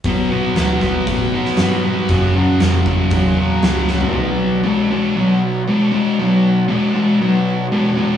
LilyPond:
<<
  \new Staff \with { instrumentName = "Tonewheel organ" } { \time 4/4 \key b \minor \tempo 4 = 118 r1 | r1 | \tuplet 3/2 { <c dis' g' ais' d''>8 <b, d' fis' a' cis''>4~ } <b, d' fis' a' cis''>2.~ | <b, d' fis' a' cis''>1 | }
  \new Staff \with { instrumentName = "Distorted electric guitar" } { \clef bass \time 4/4 \key b \minor <b, fis b>8 <b, fis b>8 <b, fis b>8 <b, fis b>8 <b, fis b>8 <b, fis b>8 <b, fis b>8 <b, fis b>8 | <fis, cis fis>8 <fis, cis fis>8 <fis, cis fis>8 <fis, cis fis>8 <fis, cis fis>8 <fis, cis fis>8 <fis, cis fis>8 <fis, cis fis>8 | <b, fis>4 <b, gis>8 <b, gis>8 <b, fis>4 <b, gis>8 <b, gis>8 | <b, fis>4 <b, gis>8 <b, gis>8 <b, fis>4 <b, gis>8 <b, gis>8 | }
  \new Staff \with { instrumentName = "Picked electric bass" } { \clef bass \time 4/4 \key b \minor b,,4 d,4 a,4 g,4 | fis,4 eis,4 e,4 cis,4 | r1 | r1 | }
  \new DrumStaff \with { instrumentName = "Drums" } \drummode { \time 4/4 <hho bd>4 <hho sn>8 <bd sn>8 <hho bd>8. sn16 <hho sn>4 | <hho bd>4 <hho sn>8 bd8 <hho bd>4 <hho sn>8 sn16 tomfh16 | r4 r4 r4 r4 | r4 r4 r4 r4 | }
>>